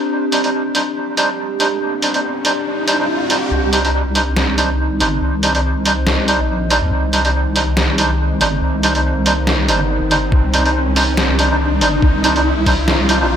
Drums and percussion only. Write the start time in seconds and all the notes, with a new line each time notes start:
0.32 closed hi-hat
0.44 closed hi-hat
0.75 closed hi-hat
1.17 closed hi-hat
1.60 closed hi-hat
2.02 closed hi-hat
2.14 closed hi-hat
2.45 closed hi-hat
2.88 closed hi-hat
3.30 closed hi-hat
3.73 closed hi-hat
3.85 closed hi-hat
4.15 closed hi-hat
4.37 snare
4.58 closed hi-hat
5.00 closed hi-hat
5.43 closed hi-hat
5.55 closed hi-hat
5.86 closed hi-hat
6.07 snare
6.28 closed hi-hat
6.70 closed hi-hat
7.13 closed hi-hat
7.25 closed hi-hat
7.56 closed hi-hat
7.77 snare
7.98 closed hi-hat
8.41 closed hi-hat
8.83 closed hi-hat
8.95 closed hi-hat
9.26 closed hi-hat
9.47 snare
9.68 closed hi-hat
10.11 closed hi-hat
10.32 kick
10.54 closed hi-hat
10.65 closed hi-hat
10.96 open hi-hat
11.17 snare
11.39 closed hi-hat
11.81 closed hi-hat
12.02 kick
12.24 closed hi-hat
12.36 closed hi-hat
12.66 kick, open hi-hat
12.88 snare
13.09 closed hi-hat